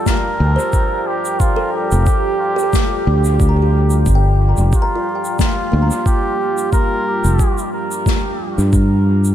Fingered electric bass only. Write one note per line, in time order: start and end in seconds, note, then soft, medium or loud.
0.40 0.56 D2 medium
1.92 2.05 F1 medium
3.07 4.04 D2 medium
4.06 4.54 G1 loud
4.58 4.71 F1 medium
5.73 5.89 D2 medium
7.25 7.38 F1 medium
8.58 9.35 G2 medium